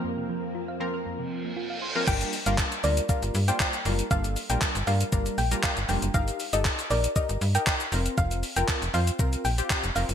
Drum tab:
CC |----------------|x---------------|----------------|----------------|
HH |----------------|-xox-xox-xox-xox|-xox-xox-xox-xox|-xox-xox-xox-xox|
SH |----------------|xxxxxxxxxxxxxxxx|xxxxxxxxxxxxxxxx|xxxxxxxxxxxxxxxx|
CP |----------------|----x-------x---|----x-------x---|----x-------x---|
BD |----------------|o---o---o---o---|o---o---o---o---|o---o---o---o---|

CC |----------------|
HH |-xox-xox-xox-xox|
SH |xxxxxxxxxxxxxxxx|
CP |----x-------x---|
BD |o---o---o---o---|